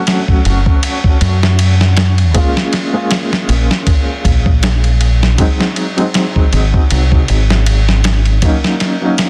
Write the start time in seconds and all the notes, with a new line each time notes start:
Already playing: F#3 A3 C#4 F#4
0.07 snare, ride
0.28 kick
0.45 F#1, ride
0.66 kick
0.83 ride
1.04 kick
1.21 F#2, ride
1.43 snare
1.59 ride
1.81 snare
1.97 snare, ride
2.18 ride
2.34 G#3 A#3 C#4 F4, kick, ride
2.57 snare
2.73 snare, ride
2.93 G#3 A#3 C#4 F4
3.11 snare, ride
3.33 snare
3.49 A#1, ride
3.71 snare
3.87 kick, ride
4.25 A#1, kick, ride
4.46 kick
4.63 snare, ride
4.84 ride
5.01 ride
5.23 snare
5.38 F#3 G#3 C4 D#4, kick, ride
5.61 snare
5.76 ride
5.97 F#3 G#3 C4 D#4, ride
6.14 snare, ride
6.36 kick
6.53 G#1, ride
6.74 kick
6.91 C2, ride
7.12 kick
7.28 G#1, ride
7.50 snare
7.66 ride
7.89 snare
8.04 snare, ride
8.26 ride
8.42 F#3 A#3 C#4 D#4, kick, ride
8.64 snare
8.80 snare, ride
9.02 F#3 A#3 C#4 D#4
9.18 snare, ride